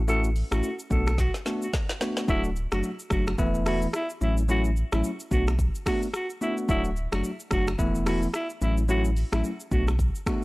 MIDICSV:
0, 0, Header, 1, 5, 480
1, 0, Start_track
1, 0, Key_signature, 2, "minor"
1, 0, Tempo, 550459
1, 72, Time_signature, 4, 2, 24, 8
1, 9107, End_track
2, 0, Start_track
2, 0, Title_t, "Alto saxophone"
2, 0, Program_c, 0, 65
2, 80, Note_on_c, 0, 69, 110
2, 195, Note_off_c, 0, 69, 0
2, 460, Note_on_c, 0, 66, 76
2, 660, Note_off_c, 0, 66, 0
2, 805, Note_on_c, 0, 69, 78
2, 1003, Note_off_c, 0, 69, 0
2, 1046, Note_on_c, 0, 66, 81
2, 1158, Note_off_c, 0, 66, 0
2, 1423, Note_on_c, 0, 66, 70
2, 1504, Note_off_c, 0, 66, 0
2, 2006, Note_on_c, 0, 64, 114
2, 2118, Note_off_c, 0, 64, 0
2, 2383, Note_on_c, 0, 66, 77
2, 2463, Note_off_c, 0, 66, 0
2, 2723, Note_on_c, 0, 66, 78
2, 2836, Note_off_c, 0, 66, 0
2, 3204, Note_on_c, 0, 66, 83
2, 3317, Note_off_c, 0, 66, 0
2, 3444, Note_on_c, 0, 64, 88
2, 3557, Note_off_c, 0, 64, 0
2, 3685, Note_on_c, 0, 64, 84
2, 3798, Note_off_c, 0, 64, 0
2, 3926, Note_on_c, 0, 66, 109
2, 4038, Note_off_c, 0, 66, 0
2, 4304, Note_on_c, 0, 64, 75
2, 4384, Note_off_c, 0, 64, 0
2, 4646, Note_on_c, 0, 66, 87
2, 4758, Note_off_c, 0, 66, 0
2, 5123, Note_on_c, 0, 66, 80
2, 5237, Note_off_c, 0, 66, 0
2, 5365, Note_on_c, 0, 66, 80
2, 5478, Note_off_c, 0, 66, 0
2, 5603, Note_on_c, 0, 64, 79
2, 5717, Note_off_c, 0, 64, 0
2, 5843, Note_on_c, 0, 64, 120
2, 5956, Note_off_c, 0, 64, 0
2, 6222, Note_on_c, 0, 66, 82
2, 6303, Note_off_c, 0, 66, 0
2, 6565, Note_on_c, 0, 66, 93
2, 6678, Note_off_c, 0, 66, 0
2, 7044, Note_on_c, 0, 66, 87
2, 7157, Note_off_c, 0, 66, 0
2, 7283, Note_on_c, 0, 64, 92
2, 7397, Note_off_c, 0, 64, 0
2, 7525, Note_on_c, 0, 64, 83
2, 7638, Note_off_c, 0, 64, 0
2, 7762, Note_on_c, 0, 66, 102
2, 7876, Note_off_c, 0, 66, 0
2, 8143, Note_on_c, 0, 64, 74
2, 8223, Note_off_c, 0, 64, 0
2, 8483, Note_on_c, 0, 66, 86
2, 8597, Note_off_c, 0, 66, 0
2, 9107, End_track
3, 0, Start_track
3, 0, Title_t, "Tine electric piano"
3, 0, Program_c, 1, 4
3, 68, Note_on_c, 1, 57, 92
3, 71, Note_on_c, 1, 61, 84
3, 72, Note_on_c, 1, 64, 85
3, 74, Note_on_c, 1, 66, 100
3, 247, Note_off_c, 1, 57, 0
3, 248, Note_off_c, 1, 61, 0
3, 249, Note_off_c, 1, 64, 0
3, 250, Note_off_c, 1, 66, 0
3, 448, Note_on_c, 1, 57, 76
3, 449, Note_on_c, 1, 61, 74
3, 451, Note_on_c, 1, 64, 72
3, 453, Note_on_c, 1, 66, 85
3, 602, Note_off_c, 1, 57, 0
3, 603, Note_off_c, 1, 61, 0
3, 604, Note_off_c, 1, 64, 0
3, 605, Note_off_c, 1, 66, 0
3, 789, Note_on_c, 1, 57, 76
3, 791, Note_on_c, 1, 59, 71
3, 793, Note_on_c, 1, 62, 70
3, 794, Note_on_c, 1, 66, 83
3, 967, Note_off_c, 1, 57, 0
3, 968, Note_off_c, 1, 59, 0
3, 969, Note_off_c, 1, 62, 0
3, 970, Note_off_c, 1, 66, 0
3, 1270, Note_on_c, 1, 57, 80
3, 1272, Note_on_c, 1, 59, 70
3, 1274, Note_on_c, 1, 62, 75
3, 1275, Note_on_c, 1, 66, 90
3, 1448, Note_off_c, 1, 57, 0
3, 1449, Note_off_c, 1, 59, 0
3, 1450, Note_off_c, 1, 62, 0
3, 1450, Note_off_c, 1, 66, 0
3, 1751, Note_on_c, 1, 57, 81
3, 1752, Note_on_c, 1, 59, 75
3, 1754, Note_on_c, 1, 62, 77
3, 1756, Note_on_c, 1, 66, 89
3, 1975, Note_off_c, 1, 57, 0
3, 1976, Note_off_c, 1, 59, 0
3, 1977, Note_off_c, 1, 62, 0
3, 1978, Note_off_c, 1, 66, 0
3, 1991, Note_on_c, 1, 54, 89
3, 1993, Note_on_c, 1, 57, 83
3, 1995, Note_on_c, 1, 62, 85
3, 1996, Note_on_c, 1, 66, 106
3, 2168, Note_off_c, 1, 54, 0
3, 2169, Note_off_c, 1, 57, 0
3, 2170, Note_off_c, 1, 62, 0
3, 2171, Note_off_c, 1, 66, 0
3, 2372, Note_on_c, 1, 54, 77
3, 2373, Note_on_c, 1, 57, 70
3, 2375, Note_on_c, 1, 62, 68
3, 2377, Note_on_c, 1, 66, 87
3, 2524, Note_off_c, 1, 54, 0
3, 2525, Note_off_c, 1, 57, 0
3, 2526, Note_off_c, 1, 62, 0
3, 2526, Note_off_c, 1, 66, 0
3, 2711, Note_on_c, 1, 54, 75
3, 2713, Note_on_c, 1, 57, 68
3, 2714, Note_on_c, 1, 62, 69
3, 2716, Note_on_c, 1, 66, 88
3, 2888, Note_off_c, 1, 54, 0
3, 2889, Note_off_c, 1, 57, 0
3, 2890, Note_off_c, 1, 62, 0
3, 2891, Note_off_c, 1, 66, 0
3, 2952, Note_on_c, 1, 52, 103
3, 2953, Note_on_c, 1, 57, 90
3, 2955, Note_on_c, 1, 59, 91
3, 2957, Note_on_c, 1, 64, 108
3, 3176, Note_off_c, 1, 52, 0
3, 3176, Note_off_c, 1, 57, 0
3, 3177, Note_off_c, 1, 59, 0
3, 3178, Note_off_c, 1, 64, 0
3, 3191, Note_on_c, 1, 52, 81
3, 3192, Note_on_c, 1, 57, 76
3, 3194, Note_on_c, 1, 59, 74
3, 3196, Note_on_c, 1, 64, 90
3, 3368, Note_off_c, 1, 52, 0
3, 3369, Note_off_c, 1, 57, 0
3, 3370, Note_off_c, 1, 59, 0
3, 3371, Note_off_c, 1, 64, 0
3, 3670, Note_on_c, 1, 54, 79
3, 3672, Note_on_c, 1, 57, 73
3, 3674, Note_on_c, 1, 61, 75
3, 3676, Note_on_c, 1, 64, 85
3, 3848, Note_off_c, 1, 54, 0
3, 3849, Note_off_c, 1, 57, 0
3, 3850, Note_off_c, 1, 61, 0
3, 3851, Note_off_c, 1, 64, 0
3, 3913, Note_on_c, 1, 54, 92
3, 3914, Note_on_c, 1, 57, 88
3, 3915, Note_on_c, 1, 61, 85
3, 3918, Note_on_c, 1, 64, 101
3, 4089, Note_off_c, 1, 54, 0
3, 4090, Note_off_c, 1, 57, 0
3, 4090, Note_off_c, 1, 61, 0
3, 4092, Note_off_c, 1, 64, 0
3, 4292, Note_on_c, 1, 54, 79
3, 4293, Note_on_c, 1, 57, 70
3, 4294, Note_on_c, 1, 61, 72
3, 4297, Note_on_c, 1, 64, 86
3, 4444, Note_off_c, 1, 54, 0
3, 4445, Note_off_c, 1, 57, 0
3, 4445, Note_off_c, 1, 61, 0
3, 4447, Note_off_c, 1, 64, 0
3, 4632, Note_on_c, 1, 57, 74
3, 4633, Note_on_c, 1, 59, 70
3, 4635, Note_on_c, 1, 62, 74
3, 4637, Note_on_c, 1, 66, 85
3, 4809, Note_off_c, 1, 57, 0
3, 4809, Note_off_c, 1, 59, 0
3, 4810, Note_off_c, 1, 62, 0
3, 4811, Note_off_c, 1, 66, 0
3, 5110, Note_on_c, 1, 57, 83
3, 5112, Note_on_c, 1, 59, 77
3, 5113, Note_on_c, 1, 62, 76
3, 5115, Note_on_c, 1, 66, 89
3, 5288, Note_off_c, 1, 57, 0
3, 5289, Note_off_c, 1, 59, 0
3, 5289, Note_off_c, 1, 62, 0
3, 5290, Note_off_c, 1, 66, 0
3, 5590, Note_on_c, 1, 57, 81
3, 5591, Note_on_c, 1, 59, 75
3, 5593, Note_on_c, 1, 62, 76
3, 5595, Note_on_c, 1, 66, 93
3, 5815, Note_off_c, 1, 57, 0
3, 5815, Note_off_c, 1, 59, 0
3, 5816, Note_off_c, 1, 62, 0
3, 5817, Note_off_c, 1, 66, 0
3, 5830, Note_on_c, 1, 54, 93
3, 5832, Note_on_c, 1, 57, 83
3, 5833, Note_on_c, 1, 62, 83
3, 5835, Note_on_c, 1, 66, 102
3, 6008, Note_off_c, 1, 54, 0
3, 6009, Note_off_c, 1, 57, 0
3, 6009, Note_off_c, 1, 62, 0
3, 6010, Note_off_c, 1, 66, 0
3, 6210, Note_on_c, 1, 54, 76
3, 6212, Note_on_c, 1, 57, 71
3, 6213, Note_on_c, 1, 62, 70
3, 6215, Note_on_c, 1, 66, 84
3, 6363, Note_off_c, 1, 54, 0
3, 6364, Note_off_c, 1, 57, 0
3, 6365, Note_off_c, 1, 62, 0
3, 6366, Note_off_c, 1, 66, 0
3, 6548, Note_on_c, 1, 54, 77
3, 6551, Note_on_c, 1, 57, 68
3, 6552, Note_on_c, 1, 62, 71
3, 6554, Note_on_c, 1, 66, 85
3, 6727, Note_off_c, 1, 54, 0
3, 6728, Note_off_c, 1, 57, 0
3, 6729, Note_off_c, 1, 62, 0
3, 6729, Note_off_c, 1, 66, 0
3, 6788, Note_on_c, 1, 52, 97
3, 6790, Note_on_c, 1, 57, 93
3, 6792, Note_on_c, 1, 59, 89
3, 6793, Note_on_c, 1, 64, 109
3, 7014, Note_off_c, 1, 52, 0
3, 7015, Note_off_c, 1, 57, 0
3, 7016, Note_off_c, 1, 59, 0
3, 7016, Note_off_c, 1, 64, 0
3, 7030, Note_on_c, 1, 52, 84
3, 7032, Note_on_c, 1, 57, 73
3, 7032, Note_on_c, 1, 59, 76
3, 7035, Note_on_c, 1, 64, 91
3, 7208, Note_off_c, 1, 52, 0
3, 7209, Note_off_c, 1, 57, 0
3, 7209, Note_off_c, 1, 59, 0
3, 7210, Note_off_c, 1, 64, 0
3, 7512, Note_on_c, 1, 54, 82
3, 7512, Note_on_c, 1, 57, 78
3, 7514, Note_on_c, 1, 61, 75
3, 7516, Note_on_c, 1, 64, 90
3, 7689, Note_off_c, 1, 54, 0
3, 7689, Note_off_c, 1, 57, 0
3, 7690, Note_off_c, 1, 61, 0
3, 7691, Note_off_c, 1, 64, 0
3, 7751, Note_on_c, 1, 54, 95
3, 7752, Note_on_c, 1, 57, 83
3, 7753, Note_on_c, 1, 61, 81
3, 7755, Note_on_c, 1, 64, 103
3, 7928, Note_off_c, 1, 54, 0
3, 7928, Note_off_c, 1, 57, 0
3, 7929, Note_off_c, 1, 61, 0
3, 7930, Note_off_c, 1, 64, 0
3, 8129, Note_on_c, 1, 54, 81
3, 8131, Note_on_c, 1, 57, 72
3, 8133, Note_on_c, 1, 61, 71
3, 8135, Note_on_c, 1, 64, 83
3, 8283, Note_off_c, 1, 54, 0
3, 8283, Note_off_c, 1, 57, 0
3, 8285, Note_off_c, 1, 61, 0
3, 8286, Note_off_c, 1, 64, 0
3, 8471, Note_on_c, 1, 57, 78
3, 8473, Note_on_c, 1, 59, 71
3, 8474, Note_on_c, 1, 62, 71
3, 8476, Note_on_c, 1, 66, 85
3, 8648, Note_off_c, 1, 57, 0
3, 8649, Note_off_c, 1, 59, 0
3, 8650, Note_off_c, 1, 62, 0
3, 8651, Note_off_c, 1, 66, 0
3, 8953, Note_on_c, 1, 57, 79
3, 8954, Note_on_c, 1, 59, 70
3, 8955, Note_on_c, 1, 62, 74
3, 8957, Note_on_c, 1, 66, 88
3, 9107, Note_off_c, 1, 57, 0
3, 9107, Note_off_c, 1, 59, 0
3, 9107, Note_off_c, 1, 62, 0
3, 9107, Note_off_c, 1, 66, 0
3, 9107, End_track
4, 0, Start_track
4, 0, Title_t, "Sub bass"
4, 0, Program_c, 2, 38
4, 0, Note_on_c, 2, 33, 105
4, 374, Note_off_c, 2, 33, 0
4, 450, Note_on_c, 2, 33, 92
4, 539, Note_off_c, 2, 33, 0
4, 792, Note_on_c, 2, 35, 98
4, 1125, Note_off_c, 2, 35, 0
4, 1992, Note_on_c, 2, 26, 110
4, 2325, Note_off_c, 2, 26, 0
4, 2371, Note_on_c, 2, 30, 81
4, 2460, Note_off_c, 2, 30, 0
4, 2712, Note_on_c, 2, 30, 95
4, 2923, Note_off_c, 2, 30, 0
4, 2951, Note_on_c, 2, 28, 99
4, 3373, Note_off_c, 2, 28, 0
4, 3673, Note_on_c, 2, 33, 103
4, 4216, Note_off_c, 2, 33, 0
4, 4292, Note_on_c, 2, 33, 94
4, 4380, Note_off_c, 2, 33, 0
4, 4633, Note_on_c, 2, 35, 100
4, 4965, Note_off_c, 2, 35, 0
4, 5832, Note_on_c, 2, 26, 113
4, 6165, Note_off_c, 2, 26, 0
4, 6211, Note_on_c, 2, 30, 85
4, 6300, Note_off_c, 2, 30, 0
4, 6552, Note_on_c, 2, 30, 93
4, 6763, Note_off_c, 2, 30, 0
4, 6791, Note_on_c, 2, 28, 102
4, 7213, Note_off_c, 2, 28, 0
4, 7512, Note_on_c, 2, 33, 105
4, 8055, Note_off_c, 2, 33, 0
4, 8131, Note_on_c, 2, 33, 95
4, 8220, Note_off_c, 2, 33, 0
4, 8472, Note_on_c, 2, 35, 106
4, 8805, Note_off_c, 2, 35, 0
4, 9107, End_track
5, 0, Start_track
5, 0, Title_t, "Drums"
5, 72, Note_on_c, 9, 82, 66
5, 159, Note_off_c, 9, 82, 0
5, 209, Note_on_c, 9, 82, 54
5, 296, Note_off_c, 9, 82, 0
5, 313, Note_on_c, 9, 46, 45
5, 313, Note_on_c, 9, 82, 44
5, 400, Note_off_c, 9, 46, 0
5, 400, Note_off_c, 9, 82, 0
5, 452, Note_on_c, 9, 37, 100
5, 452, Note_on_c, 9, 82, 53
5, 455, Note_on_c, 9, 26, 81
5, 539, Note_off_c, 9, 37, 0
5, 539, Note_off_c, 9, 82, 0
5, 543, Note_off_c, 9, 26, 0
5, 552, Note_on_c, 9, 82, 78
5, 639, Note_off_c, 9, 82, 0
5, 691, Note_on_c, 9, 82, 62
5, 778, Note_off_c, 9, 82, 0
5, 792, Note_on_c, 9, 36, 102
5, 793, Note_on_c, 9, 82, 60
5, 879, Note_off_c, 9, 36, 0
5, 880, Note_off_c, 9, 82, 0
5, 932, Note_on_c, 9, 82, 50
5, 936, Note_on_c, 9, 37, 87
5, 939, Note_on_c, 9, 26, 72
5, 1019, Note_off_c, 9, 82, 0
5, 1023, Note_off_c, 9, 37, 0
5, 1027, Note_off_c, 9, 26, 0
5, 1031, Note_on_c, 9, 36, 98
5, 1032, Note_on_c, 9, 38, 56
5, 1033, Note_on_c, 9, 82, 85
5, 1118, Note_off_c, 9, 36, 0
5, 1119, Note_off_c, 9, 38, 0
5, 1121, Note_off_c, 9, 82, 0
5, 1171, Note_on_c, 9, 38, 55
5, 1173, Note_on_c, 9, 82, 55
5, 1259, Note_off_c, 9, 38, 0
5, 1260, Note_off_c, 9, 82, 0
5, 1273, Note_on_c, 9, 38, 73
5, 1274, Note_on_c, 9, 82, 63
5, 1360, Note_off_c, 9, 38, 0
5, 1361, Note_off_c, 9, 82, 0
5, 1413, Note_on_c, 9, 82, 55
5, 1501, Note_off_c, 9, 82, 0
5, 1512, Note_on_c, 9, 36, 102
5, 1513, Note_on_c, 9, 38, 89
5, 1514, Note_on_c, 9, 82, 71
5, 1600, Note_off_c, 9, 36, 0
5, 1600, Note_off_c, 9, 38, 0
5, 1602, Note_off_c, 9, 82, 0
5, 1651, Note_on_c, 9, 38, 77
5, 1651, Note_on_c, 9, 82, 54
5, 1739, Note_off_c, 9, 38, 0
5, 1739, Note_off_c, 9, 82, 0
5, 1752, Note_on_c, 9, 38, 101
5, 1754, Note_on_c, 9, 82, 56
5, 1839, Note_off_c, 9, 38, 0
5, 1841, Note_off_c, 9, 82, 0
5, 1891, Note_on_c, 9, 38, 93
5, 1893, Note_on_c, 9, 82, 55
5, 1978, Note_off_c, 9, 38, 0
5, 1980, Note_off_c, 9, 82, 0
5, 1991, Note_on_c, 9, 82, 64
5, 1992, Note_on_c, 9, 36, 115
5, 2079, Note_off_c, 9, 36, 0
5, 2079, Note_off_c, 9, 82, 0
5, 2128, Note_on_c, 9, 82, 54
5, 2215, Note_off_c, 9, 82, 0
5, 2233, Note_on_c, 9, 82, 46
5, 2321, Note_off_c, 9, 82, 0
5, 2371, Note_on_c, 9, 37, 102
5, 2372, Note_on_c, 9, 82, 51
5, 2375, Note_on_c, 9, 26, 80
5, 2459, Note_off_c, 9, 37, 0
5, 2459, Note_off_c, 9, 82, 0
5, 2462, Note_off_c, 9, 26, 0
5, 2471, Note_on_c, 9, 82, 78
5, 2558, Note_off_c, 9, 82, 0
5, 2611, Note_on_c, 9, 82, 61
5, 2698, Note_off_c, 9, 82, 0
5, 2706, Note_on_c, 9, 37, 102
5, 2709, Note_on_c, 9, 26, 80
5, 2712, Note_on_c, 9, 36, 103
5, 2713, Note_on_c, 9, 82, 63
5, 2793, Note_off_c, 9, 37, 0
5, 2796, Note_off_c, 9, 26, 0
5, 2799, Note_off_c, 9, 36, 0
5, 2800, Note_off_c, 9, 82, 0
5, 2853, Note_on_c, 9, 82, 49
5, 2857, Note_on_c, 9, 37, 90
5, 2860, Note_on_c, 9, 26, 67
5, 2940, Note_off_c, 9, 82, 0
5, 2944, Note_off_c, 9, 37, 0
5, 2947, Note_off_c, 9, 26, 0
5, 2951, Note_on_c, 9, 36, 96
5, 2953, Note_on_c, 9, 82, 81
5, 3038, Note_off_c, 9, 36, 0
5, 3040, Note_off_c, 9, 82, 0
5, 3092, Note_on_c, 9, 82, 58
5, 3179, Note_off_c, 9, 82, 0
5, 3193, Note_on_c, 9, 37, 98
5, 3193, Note_on_c, 9, 46, 61
5, 3193, Note_on_c, 9, 82, 62
5, 3196, Note_on_c, 9, 26, 79
5, 3280, Note_off_c, 9, 37, 0
5, 3280, Note_off_c, 9, 46, 0
5, 3280, Note_off_c, 9, 82, 0
5, 3283, Note_off_c, 9, 26, 0
5, 3331, Note_on_c, 9, 82, 58
5, 3418, Note_off_c, 9, 82, 0
5, 3430, Note_on_c, 9, 37, 97
5, 3433, Note_on_c, 9, 26, 74
5, 3433, Note_on_c, 9, 82, 74
5, 3517, Note_off_c, 9, 37, 0
5, 3521, Note_off_c, 9, 26, 0
5, 3521, Note_off_c, 9, 82, 0
5, 3571, Note_on_c, 9, 82, 52
5, 3658, Note_off_c, 9, 82, 0
5, 3673, Note_on_c, 9, 82, 54
5, 3760, Note_off_c, 9, 82, 0
5, 3813, Note_on_c, 9, 82, 55
5, 3900, Note_off_c, 9, 82, 0
5, 3912, Note_on_c, 9, 82, 67
5, 4000, Note_off_c, 9, 82, 0
5, 4050, Note_on_c, 9, 82, 57
5, 4137, Note_off_c, 9, 82, 0
5, 4154, Note_on_c, 9, 82, 44
5, 4242, Note_off_c, 9, 82, 0
5, 4293, Note_on_c, 9, 37, 103
5, 4293, Note_on_c, 9, 82, 53
5, 4297, Note_on_c, 9, 26, 81
5, 4380, Note_off_c, 9, 37, 0
5, 4380, Note_off_c, 9, 82, 0
5, 4384, Note_off_c, 9, 26, 0
5, 4393, Note_on_c, 9, 82, 82
5, 4480, Note_off_c, 9, 82, 0
5, 4532, Note_on_c, 9, 82, 63
5, 4619, Note_off_c, 9, 82, 0
5, 4633, Note_on_c, 9, 36, 101
5, 4634, Note_on_c, 9, 82, 64
5, 4720, Note_off_c, 9, 36, 0
5, 4721, Note_off_c, 9, 82, 0
5, 4773, Note_on_c, 9, 82, 50
5, 4777, Note_on_c, 9, 37, 86
5, 4780, Note_on_c, 9, 26, 73
5, 4860, Note_off_c, 9, 82, 0
5, 4864, Note_off_c, 9, 37, 0
5, 4868, Note_off_c, 9, 26, 0
5, 4872, Note_on_c, 9, 36, 93
5, 4874, Note_on_c, 9, 82, 85
5, 4959, Note_off_c, 9, 36, 0
5, 4961, Note_off_c, 9, 82, 0
5, 5014, Note_on_c, 9, 82, 57
5, 5101, Note_off_c, 9, 82, 0
5, 5111, Note_on_c, 9, 36, 89
5, 5113, Note_on_c, 9, 37, 102
5, 5113, Note_on_c, 9, 46, 59
5, 5113, Note_on_c, 9, 82, 61
5, 5117, Note_on_c, 9, 26, 80
5, 5198, Note_off_c, 9, 36, 0
5, 5200, Note_off_c, 9, 37, 0
5, 5200, Note_off_c, 9, 46, 0
5, 5200, Note_off_c, 9, 82, 0
5, 5204, Note_off_c, 9, 26, 0
5, 5252, Note_on_c, 9, 82, 57
5, 5339, Note_off_c, 9, 82, 0
5, 5350, Note_on_c, 9, 37, 90
5, 5353, Note_on_c, 9, 26, 71
5, 5353, Note_on_c, 9, 82, 74
5, 5437, Note_off_c, 9, 37, 0
5, 5440, Note_off_c, 9, 26, 0
5, 5440, Note_off_c, 9, 82, 0
5, 5491, Note_on_c, 9, 82, 56
5, 5579, Note_off_c, 9, 82, 0
5, 5594, Note_on_c, 9, 82, 56
5, 5681, Note_off_c, 9, 82, 0
5, 5733, Note_on_c, 9, 82, 53
5, 5821, Note_off_c, 9, 82, 0
5, 5832, Note_on_c, 9, 36, 116
5, 5832, Note_on_c, 9, 82, 67
5, 5919, Note_off_c, 9, 36, 0
5, 5919, Note_off_c, 9, 82, 0
5, 5968, Note_on_c, 9, 82, 53
5, 6055, Note_off_c, 9, 82, 0
5, 6072, Note_on_c, 9, 82, 42
5, 6160, Note_off_c, 9, 82, 0
5, 6212, Note_on_c, 9, 37, 103
5, 6212, Note_on_c, 9, 82, 53
5, 6215, Note_on_c, 9, 26, 81
5, 6299, Note_off_c, 9, 37, 0
5, 6299, Note_off_c, 9, 82, 0
5, 6302, Note_off_c, 9, 26, 0
5, 6312, Note_on_c, 9, 82, 78
5, 6400, Note_off_c, 9, 82, 0
5, 6451, Note_on_c, 9, 82, 61
5, 6539, Note_off_c, 9, 82, 0
5, 6546, Note_on_c, 9, 37, 106
5, 6549, Note_on_c, 9, 26, 85
5, 6552, Note_on_c, 9, 36, 102
5, 6553, Note_on_c, 9, 82, 61
5, 6633, Note_off_c, 9, 37, 0
5, 6636, Note_off_c, 9, 26, 0
5, 6639, Note_off_c, 9, 36, 0
5, 6640, Note_off_c, 9, 82, 0
5, 6691, Note_on_c, 9, 82, 49
5, 6695, Note_on_c, 9, 37, 88
5, 6699, Note_on_c, 9, 26, 74
5, 6778, Note_off_c, 9, 82, 0
5, 6782, Note_off_c, 9, 37, 0
5, 6786, Note_off_c, 9, 26, 0
5, 6791, Note_on_c, 9, 36, 95
5, 6793, Note_on_c, 9, 82, 88
5, 6878, Note_off_c, 9, 36, 0
5, 6881, Note_off_c, 9, 82, 0
5, 6932, Note_on_c, 9, 82, 55
5, 7019, Note_off_c, 9, 82, 0
5, 7032, Note_on_c, 9, 37, 96
5, 7032, Note_on_c, 9, 46, 61
5, 7032, Note_on_c, 9, 82, 63
5, 7035, Note_on_c, 9, 26, 80
5, 7119, Note_off_c, 9, 37, 0
5, 7119, Note_off_c, 9, 46, 0
5, 7119, Note_off_c, 9, 82, 0
5, 7122, Note_off_c, 9, 26, 0
5, 7171, Note_on_c, 9, 82, 56
5, 7258, Note_off_c, 9, 82, 0
5, 7269, Note_on_c, 9, 37, 92
5, 7273, Note_on_c, 9, 26, 72
5, 7273, Note_on_c, 9, 82, 73
5, 7356, Note_off_c, 9, 37, 0
5, 7360, Note_off_c, 9, 26, 0
5, 7360, Note_off_c, 9, 82, 0
5, 7410, Note_on_c, 9, 82, 55
5, 7497, Note_off_c, 9, 82, 0
5, 7512, Note_on_c, 9, 82, 57
5, 7600, Note_off_c, 9, 82, 0
5, 7653, Note_on_c, 9, 82, 53
5, 7740, Note_off_c, 9, 82, 0
5, 7750, Note_on_c, 9, 82, 70
5, 7838, Note_off_c, 9, 82, 0
5, 7889, Note_on_c, 9, 82, 53
5, 7976, Note_off_c, 9, 82, 0
5, 7994, Note_on_c, 9, 46, 46
5, 7994, Note_on_c, 9, 82, 44
5, 8081, Note_off_c, 9, 46, 0
5, 8081, Note_off_c, 9, 82, 0
5, 8132, Note_on_c, 9, 37, 102
5, 8132, Note_on_c, 9, 82, 53
5, 8136, Note_on_c, 9, 26, 81
5, 8220, Note_off_c, 9, 37, 0
5, 8220, Note_off_c, 9, 82, 0
5, 8223, Note_off_c, 9, 26, 0
5, 8233, Note_on_c, 9, 82, 76
5, 8320, Note_off_c, 9, 82, 0
5, 8372, Note_on_c, 9, 82, 59
5, 8459, Note_off_c, 9, 82, 0
5, 8472, Note_on_c, 9, 36, 101
5, 8474, Note_on_c, 9, 82, 61
5, 8559, Note_off_c, 9, 36, 0
5, 8561, Note_off_c, 9, 82, 0
5, 8612, Note_on_c, 9, 82, 52
5, 8616, Note_on_c, 9, 37, 87
5, 8620, Note_on_c, 9, 26, 68
5, 8700, Note_off_c, 9, 82, 0
5, 8704, Note_off_c, 9, 37, 0
5, 8707, Note_off_c, 9, 26, 0
5, 8711, Note_on_c, 9, 36, 96
5, 8712, Note_on_c, 9, 82, 87
5, 8798, Note_off_c, 9, 36, 0
5, 8800, Note_off_c, 9, 82, 0
5, 8853, Note_on_c, 9, 82, 58
5, 8940, Note_off_c, 9, 82, 0
5, 8950, Note_on_c, 9, 36, 88
5, 8952, Note_on_c, 9, 37, 98
5, 8952, Note_on_c, 9, 82, 60
5, 8956, Note_on_c, 9, 26, 78
5, 9037, Note_off_c, 9, 36, 0
5, 9039, Note_off_c, 9, 37, 0
5, 9039, Note_off_c, 9, 82, 0
5, 9043, Note_off_c, 9, 26, 0
5, 9107, End_track
0, 0, End_of_file